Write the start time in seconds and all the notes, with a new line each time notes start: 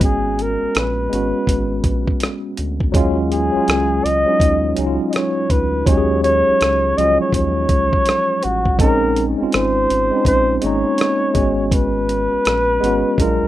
Already playing: G#1 G#3 B3 C#4 F#4
0.01 G#4, kick, closed hi-hat
0.39 A#4, closed hi-hat
0.62 A#1
0.75 A#1 B4, cross-stick, closed hi-hat
1.10 G#1 G#3 B3 C#4, closed hi-hat
1.15 F#4
1.47 G#1, kick, closed hi-hat
1.84 A#1, kick, closed hi-hat
2.08 kick
2.20 cross-stick, closed hi-hat
2.57 D2, closed hi-hat
2.80 kick
2.92 D#2 F#3 G#3 C#4, kick, closed hi-hat
2.97 F4
3.31 G#4, closed hi-hat
3.52 C#2 F#3 G#3 C#4
3.57 F4
3.68 C#2, cross-stick, closed hi-hat
4.05 C#2 D#5, closed hi-hat
4.26 F#3 G#3 C#4
4.30 D#4
4.40 D#2, kick, closed hi-hat
4.75 C#2 F#3 G#3 C#4, closed hi-hat
4.80 D#4
4.86 F4
5.10 D#5, closed hi-hat
5.14 C#5, cross-stick
5.50 D2 B4, kick, closed hi-hat
5.86 D#2 F#3 G#3 C#4 C#5, kick, closed hi-hat
5.91 G4
5.97 G#4
6.24 C#5, closed hi-hat
6.48 C#2
6.61 C#2, cross-stick, closed hi-hat
6.96 C#2 F3 G#3 C#4 D#5, closed hi-hat
7.00 F#3 F4
7.21 C#5
7.33 D#2 C#5, kick, closed hi-hat
7.69 C#2, kick, closed hi-hat
7.93 kick
8.06 cross-stick, closed hi-hat
8.43 A1 F#4, closed hi-hat
8.65 kick
8.78 A#1 G#3 C4 C#4 A#4, kick, closed hi-hat
8.83 D#4
9.16 closed hi-hat
9.38 G#1 G#3 C4 C#4
9.43 F4
9.52 G#1 C5, cross-stick, closed hi-hat
9.90 G#1, closed hi-hat
10.11 G#3 C4 C#4
10.16 D#4
10.25 A#1 C5, kick, closed hi-hat
10.59 G#3 A#3 C5, closed hi-hat
10.64 G#1 C#4 D#4 C#5
10.98 cross-stick, closed hi-hat
11.34 G#1 G#3 B3 C#4, kick, closed hi-hat
11.39 F#4
11.68 C#5, kick
11.72 B4, closed hi-hat
12.09 closed hi-hat
12.33 A#1
12.45 A#1, cross-stick, closed hi-hat
12.80 G#1 G#3 B3 C#4, closed hi-hat
12.85 F#4
13.17 A#1 F#3 G#3 D4 A#4, kick, closed hi-hat
13.22 F4
13.43 C2